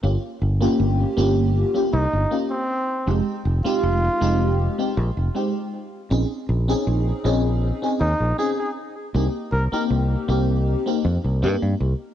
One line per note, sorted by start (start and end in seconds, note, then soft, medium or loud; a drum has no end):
0.03 0.16 G1 loud
0.03 0.14 A#3 medium
0.03 0.14 C#4 medium
0.03 0.14 F4 medium
0.03 0.15 G4 medium
0.42 0.66 G1 medium
0.61 1.13 A#3 medium
0.61 1.13 C#4 medium
0.61 1.13 F4 medium
0.61 1.13 G4 loud
0.80 1.04 G1 medium
1.17 1.63 G1 medium
1.17 1.70 A#3 loud
1.17 1.70 C#4 medium
1.17 1.71 F4 medium
1.17 1.71 G4 loud
1.74 1.85 A#3 medium
1.74 1.85 C#4 medium
1.74 1.85 F4 medium
1.74 1.85 G4 medium
1.93 2.06 C2 loud
1.93 2.39 D#4 medium
2.13 2.24 G1 medium
2.31 2.48 A#3 medium
2.31 2.49 C#4 medium
2.31 2.49 F4 medium
2.31 2.49 G4 medium
2.51 3.15 C4 medium
3.07 3.20 F1 loud
3.07 3.18 G#3 medium
3.07 3.18 C4 medium
3.07 3.18 D#4 medium
3.07 3.19 G4 medium
3.45 3.64 F1 medium
3.64 4.17 G#3 medium
3.64 4.17 C4 medium
3.64 4.17 D#4 medium
3.64 4.71 F4 loud
3.64 4.17 G4 loud
3.64 muted fingered electric bass stroke soft
3.83 4.07 F1 medium
4.21 4.67 F1 medium
4.21 4.74 G#3 medium
4.21 4.74 C4 medium
4.21 4.74 D#4 medium
4.21 4.75 G4 loud
4.78 4.89 G#3 medium
4.78 4.89 C4 medium
4.78 4.89 D#4 medium
4.78 4.89 G4 medium
4.97 5.09 A#1 loud
5.17 5.28 F1 medium
5.34 5.52 G#3 medium
5.34 5.52 C4 medium
5.34 5.53 D#4 medium
5.34 5.53 G4 medium
6.10 6.23 A#1 loud
6.10 6.22 C4 medium
6.10 6.22 C#4 medium
6.10 6.22 D#4 medium
6.10 6.22 G#4 medium
6.49 6.73 A#1 medium
6.68 7.20 C4 medium
6.68 7.21 C#4 medium
6.68 7.21 D#4 medium
6.68 7.21 G#4 loud
6.87 7.11 A#1 medium
7.24 7.70 A#1 medium
7.24 7.78 C4 medium
7.24 7.78 C#4 medium
7.24 7.78 D#4 medium
7.24 7.78 G#4 loud
7.82 7.92 C4 medium
7.82 7.93 C#4 medium
7.82 7.93 D#4 medium
7.82 7.93 G#4 medium
8.01 8.13 D#2 loud
8.01 8.38 D#4 loud
8.20 8.32 A#1 medium
8.38 8.56 C4 medium
8.38 8.56 C#4 medium
8.38 8.56 D#4 medium
8.38 8.51 G#4 medium
8.38 8.57 G#4 medium
8.59 8.70 G#4 medium
9.14 9.27 C2 loud
9.14 9.25 A#3 medium
9.14 9.26 C4 medium
9.14 9.26 D#4 medium
9.14 9.26 G4 medium
9.52 9.71 C2 medium
9.52 9.65 A#4 medium
9.72 10.24 A#3 medium
9.72 10.24 C4 medium
9.72 10.25 D#4 medium
9.72 10.25 G4 loud
9.72 9.84 A#4 medium
9.72 muted fingered electric bass stroke soft
9.90 10.15 C2 medium
10.28 10.74 C2 medium
10.28 10.81 A#3 medium
10.28 10.82 C4 medium
10.28 10.82 D#4 medium
10.28 10.82 G4 loud
10.86 10.96 A#3 medium
10.86 10.96 C4 medium
10.86 10.97 D#4 medium
10.86 10.97 G4 medium
11.05 11.17 F2 loud
11.24 11.44 C2 medium
11.42 11.55 G2 loud
11.42 11.60 A#3 medium
11.42 11.60 C4 medium
11.42 11.60 D#4 medium
11.42 11.61 G4 medium
11.62 11.74 G2 medium
11.80 11.93 C2 medium